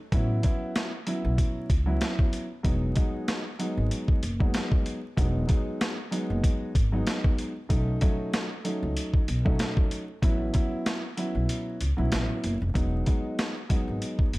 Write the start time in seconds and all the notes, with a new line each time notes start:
0.12 A1 F#3 B3 C#4 E4, kick, closed hi-hat
0.43 F#3 B3 C#4 E4, kick, closed hi-hat
0.76 snare, closed hi-hat
1.06 F#3 B3 C#4 E4, closed hi-hat
1.25 B1
1.38 kick, closed hi-hat
1.70 C#2, kick, closed hi-hat
1.86 F#3 B3 C#4 E4
2.01 snare, closed hi-hat
2.19 kick
2.33 closed hi-hat
2.63 E1 F#3 G#3 B3 D#4, kick, closed hi-hat
2.95 F#3 G#3 B3 D#4, kick, closed hi-hat
3.28 snare, closed hi-hat
3.59 F#3 G#3 B3 D#4, closed hi-hat
3.77 G#1
3.91 closed hi-hat
4.08 kick
4.23 F#1, closed hi-hat
4.40 F#3 G#3 B3 D#4, kick
4.54 snare, closed hi-hat
4.72 kick
4.86 closed hi-hat
5.17 E1 F#3 G#3 B3 D#4, kick, closed hi-hat
5.47 F#3 G#3 B3 D#4, kick, closed hi-hat
5.81 snare, closed hi-hat
6.11 F#3 G#3 B3 D#4, closed hi-hat
6.30 F#1
6.44 kick, closed hi-hat
6.75 G#1, kick, closed hi-hat
6.92 F#3 G#3 B3 D#4
7.07 snare, closed hi-hat
7.24 kick
7.38 closed hi-hat
7.69 B1 F#3 A3 C#4 D#4, kick, closed hi-hat
8.01 F#3 A3 C#4 D#4, kick, closed hi-hat
8.34 snare, closed hi-hat
8.64 F#3 A3 C#4 D#4, closed hi-hat
8.83 C#2
8.97 closed hi-hat
9.13 kick
9.28 B1, closed hi-hat
9.45 F#3 A3 C#4 D#4, kick
9.59 snare, closed hi-hat
9.77 kick
9.91 closed hi-hat
10.22 A1 F#3 B3 C#4 E4, kick, closed hi-hat
10.53 F#3 B3 C#4 E4, kick, closed hi-hat
10.86 snare, closed hi-hat
11.17 F#3 B3 C#4 E4, closed hi-hat
11.35 B1
11.49 closed hi-hat
11.81 C#2, closed hi-hat
11.97 B1 F#3 B3 C#4 E4
12.12 A1, snare, closed hi-hat
12.44 F#1, closed hi-hat
12.62 F1
12.74 E1 F#3 G#3 B3 D#4, kick, closed hi-hat
13.06 F#3 G#3 B3 D#4, kick, closed hi-hat
13.39 snare, closed hi-hat
13.69 F#3 G#3 B3 D#4, kick, closed hi-hat
13.88 G#1
14.02 closed hi-hat
14.19 kick
14.33 F#1, closed hi-hat